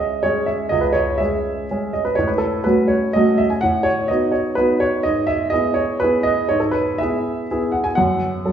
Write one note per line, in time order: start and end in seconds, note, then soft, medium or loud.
0.00 0.20 G#3 soft
0.00 0.20 C#4 soft
0.00 0.20 G#4 soft
0.00 0.23 D#5 medium
0.23 0.69 G#3 soft
0.23 0.69 C#4 soft
0.23 0.69 G#4 soft
0.23 0.48 C#5 medium
0.46 0.71 E5 medium
0.69 1.18 C#2 medium
0.69 0.82 D#5 medium
0.81 0.94 B4 medium
0.93 1.18 C#5 medium
1.18 1.66 G#3 soft
1.18 1.66 C#4 soft
1.18 1.66 G#4 soft
1.18 1.93 E5 medium
1.71 2.14 G#3 soft
1.71 2.14 C#4 soft
1.71 2.14 G#4 soft
1.93 2.05 D#5 medium
2.05 2.17 B4 medium
2.15 2.63 A2 medium
2.15 2.28 C#5 medium
2.27 2.40 B4 medium
2.38 2.63 A4 medium
2.64 3.11 A3 soft
2.64 3.11 C#4 soft
2.64 3.11 F#4 soft
2.64 2.89 B4 medium
2.88 3.14 C#5 medium
3.13 3.59 A3 soft
3.13 3.59 C#4 soft
3.13 3.59 F#4 soft
3.13 3.38 D#5 medium
3.38 3.50 E5 medium
3.50 3.62 G#5 medium
3.61 4.08 A2 medium
3.61 3.85 F#5 medium
3.83 4.08 C#5 medium
4.08 4.54 B3 soft
4.08 4.54 D#4 soft
4.08 4.54 F#4 soft
4.08 4.32 D#5 medium
4.32 4.56 C#5 medium
4.55 5.01 B3 soft
4.55 5.01 D#4 soft
4.55 5.02 F#4 soft
4.55 4.80 B4 medium
4.80 5.04 C#5 medium
5.03 5.51 G#2 medium
5.03 5.27 D#5 medium
5.27 5.51 E5 medium
5.50 5.96 B3 soft
5.50 5.96 E4 soft
5.50 5.97 G#4 soft
5.50 5.75 D#5 medium
5.74 5.99 C#5 medium
6.00 6.45 B3 soft
6.00 6.45 E4 soft
6.00 6.45 G#4 medium
6.00 6.24 B4 medium
6.23 6.47 D#5 medium
6.49 6.98 G#2 medium
6.49 6.60 C#5 medium
6.60 6.73 A4 medium
6.71 6.98 B4 medium
6.98 7.46 B3 soft
6.98 7.46 E4 soft
6.98 7.46 G#4 soft
6.98 7.73 E5 medium
7.51 7.94 B3 soft
7.51 7.94 E4 soft
7.51 7.94 G#4 medium
7.72 7.84 F#5 medium
7.84 7.96 G#5 medium
7.95 8.43 F#2 medium
7.95 8.52 F#5 medium
8.45 8.52 F#3 soft
8.45 8.52 C#4 soft
8.45 8.52 A4 soft